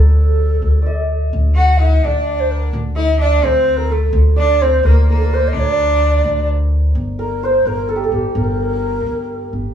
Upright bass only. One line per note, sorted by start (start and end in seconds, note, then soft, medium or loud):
0.00 0.59 D2 loud
0.62 1.28 D2 medium
1.33 1.99 D2 medium
2.04 2.69 D2 medium
2.73 3.39 D2 loud
3.43 4.09 D2 medium
4.13 4.79 D2 loud
4.83 5.50 D2 loud
5.55 6.20 D2 loud
6.24 6.90 D2 loud
6.95 7.61 G1 medium
7.65 8.09 G1 medium
8.12 8.23 G1 medium
8.35 9.01 G1 loud
9.07 9.50 G1 medium
9.53 9.64 G1 medium